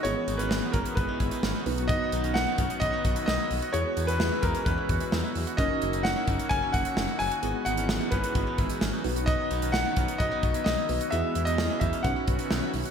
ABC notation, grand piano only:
X:1
M:4/4
L:1/16
Q:1/4=130
K:Elyd
V:1 name="Grand piano"
c3 B3 A2 B6 z2 | d4 f4 d4 d4 | c3 B3 A2 B6 z2 | d4 f4 g2 f4 g2- |
g2 f4 B8 z2 | d4 f4 d4 d4 | e3 d3 e2 f6 z2 |]